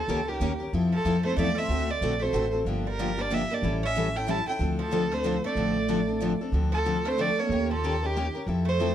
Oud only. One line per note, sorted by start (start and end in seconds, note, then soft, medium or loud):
0.00 0.27 F3 medium
0.27 0.59 D#3 medium
0.92 1.22 F3 medium
1.23 1.35 A3 medium
1.36 1.55 A3 medium
1.55 1.86 C4 medium
1.86 2.18 A3 medium
2.20 2.52 A3 medium
2.87 3.19 G3 medium
3.19 3.30 A#3 medium
3.31 3.50 A#3 medium
3.51 3.64 A#3 medium
3.83 4.16 C#4 medium
4.16 4.28 E4 medium
4.29 4.46 E4 medium
4.47 4.59 E4 medium
4.79 5.12 F3 medium
5.12 5.43 A3 medium
5.44 6.37 A3 medium
6.72 7.05 F3 medium
7.05 7.18 A3 medium
7.19 7.39 A3 medium
7.39 7.70 A#3 medium
7.71 8.03 F3 medium
8.03 8.35 D#3 medium
8.65 8.95 A3 medium